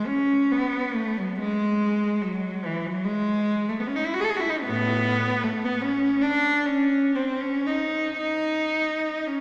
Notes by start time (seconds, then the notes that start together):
0.07 C#4
0.51 B3
0.95 A3
1.18 F#3
1.40 G#3
2.22 F#3
2.65 E3
2.86 F#3
3.04 G#3
3.69 A3
3.80 B3
3.87 C#4
3.96 D#4
4.06 E4
4.14 F#4
4.20 G#4 A4
4.30 G#4
4.36 E4 F#4
4.49 D#4
4.58 C#4
4.65 A2 B3
5.43 A3
5.65 B3
5.82 C#4
6.22 D4
6.66 C#4
7.16 C4
7.41 C#4
7.66 D#4
8.18 D#4
9.28 C#4